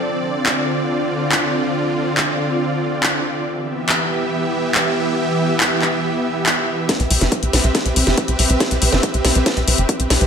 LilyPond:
<<
  \new Staff \with { instrumentName = "Supersaw synth" } { \time 4/4 \key c \major \tempo 4 = 140 <d c' f' d''>1~ | <d c' f' d''>1 | <e b g' e''>1~ | <e b g' e''>1 |
<c' g' b' e''>1~ | <c' g' b' e''>1 | }
  \new Staff \with { instrumentName = "Analog synth bass" } { \clef bass \time 4/4 \key c \major r1 | r1 | r1 | r1 |
r16 c,16 c,16 g,,16 r16 c,16 c,16 c,16 r16 c,16 c,16 g,,16 r16 c,16 c,16 c,16 | r16 c,16 c,16 g,,16 r16 c,16 c,16 c,16 r16 c,16 c,16 g,,16 r16 c,16 c,16 c,16 | }
  \new DrumStaff \with { instrumentName = "Drums" } \drummode { \time 4/4 r4 hc4 r4 hc4 | r4 hc4 r4 hc4 | r4 hc4 r4 hc4 | r4 hc8 hc8 r4 hc4 |
<hh bd sn>16 hh16 hho16 <hh sn>16 <hh bd>16 hh16 <hho sn>16 hh16 <hh bd sn>16 hh16 hho16 <hh sn>16 <hh bd>16 hh16 hho16 hh16 | <hh bd sn>16 hh16 hho16 <hh sn>16 <hh bd>16 hh16 <hho sn>16 hh16 <hh bd sn>16 hh16 hho16 hh16 <hh bd>16 hh16 <hho sn>16 hh16 | }
>>